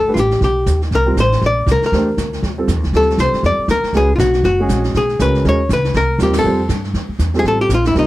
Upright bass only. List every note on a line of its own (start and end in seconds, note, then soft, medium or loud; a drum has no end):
0.00 0.15 G1 medium
0.16 0.40 A1 medium
0.41 0.66 B1 medium
0.66 0.90 D#2 medium
0.91 1.16 C2 medium
1.17 1.41 A1 medium
1.42 1.66 A#1 medium
1.66 1.81 C2 medium
1.81 muted upright bass stroke soft
1.92 2.17 E2 medium
2.17 2.42 D2 medium
2.43 2.67 D#2 medium
2.68 2.76 F2 medium
2.76 2.84 D#2 soft
2.84 2.93 C#2 medium
2.93 3.17 D2 medium
3.18 3.32 C2 medium
3.33 muted upright bass stroke soft
3.43 3.57 F2 medium
3.58 muted upright bass stroke soft
3.68 3.82 D#2 medium
3.83 muted upright bass stroke soft
3.93 4.18 C#2 medium
4.18 4.43 B1 medium
4.44 4.68 F#1 medium
4.69 4.93 A#1 medium
4.94 5.19 B1 medium
5.19 5.44 C#2 medium
5.45 5.69 D#2 medium
5.69 5.94 C#2 medium
5.94 6.18 C2 medium
6.19 6.44 D#2 medium
6.44 6.68 F2 medium
6.69 6.93 G2 medium
6.94 7.08 F2 medium
7.09 muted upright bass stroke soft
7.19 7.44 E2 medium
7.44 7.69 A1 medium
7.69 7.94 A#1 medium
7.95 8.07 C2 medium